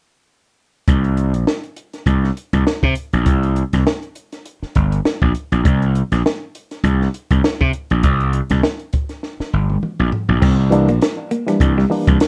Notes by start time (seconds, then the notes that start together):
0.88 C2, kick, closed hi-hat
1.04 closed hi-hat
1.17 closed hi-hat
1.34 A#1, closed hi-hat
1.47 snare
1.64 closed hi-hat
1.76 closed hi-hat
1.93 snare, closed hi-hat
2.06 C2, kick, closed hi-hat
2.24 snare
2.37 closed hi-hat
2.53 C2, kick, closed hi-hat
2.67 snare
2.83 C3, kick
2.95 closed hi-hat
3.13 A#1, closed hi-hat
3.26 C2, kick, closed hi-hat
3.43 closed hi-hat
3.56 closed hi-hat
3.73 C2, kick, snare, closed hi-hat
3.87 snare
4.03 closed hi-hat
4.15 closed hi-hat
4.32 snare, closed hi-hat
4.46 closed hi-hat
4.62 muted slap bass stroke, snare
4.75 G1, kick, closed hi-hat
4.92 closed hi-hat
5.05 muted slap bass stroke, snare
5.22 A#1, kick
5.35 closed hi-hat
5.52 A#1, closed hi-hat
5.65 C2, kick, closed hi-hat
5.82 closed hi-hat
5.95 closed hi-hat
6.12 A#1, snare, closed hi-hat
6.26 snare
6.55 closed hi-hat
6.71 snare, closed hi-hat
6.84 C2, kick, closed hi-hat
7.02 snare
7.14 closed hi-hat
7.31 C2, kick, closed hi-hat
7.44 snare
7.61 C3, kick
7.73 closed hi-hat
7.90 A#1, closed hi-hat
8.03 C2, kick, closed hi-hat
8.20 closed hi-hat
8.33 closed hi-hat
8.50 C2, kick, snare, closed hi-hat
8.63 snare
8.79 closed hi-hat
8.93 kick, closed hi-hat
9.09 snare, closed hi-hat
9.23 snare
9.40 muted slap bass stroke, snare
9.53 G1
9.70 high tom
9.82 muted slap bass stroke, mid tom
9.99 A#1
10.12 floor tom
10.29 A#1, floor tom
10.42 C2 C4, kick, crash
10.70 E3 G3 A#3 D4, muted clean electric guitar stroke, closed hi-hat
10.88 A#1 A#3, closed hi-hat
11.00 A#3 D4, muted clean electric guitar stroke, snare, closed hi-hat
11.31 A#3, closed hi-hat
11.46 E3 G3 A#3 D4, snare, closed hi-hat
11.60 C2, kick, closed hi-hat
11.78 G3, snare
11.90 E3 G3 A#3 D4, muted clean electric guitar stroke, open hi-hat
12.07 C2 E3, kick, closed hi-hat
12.20 snare, closed hi-hat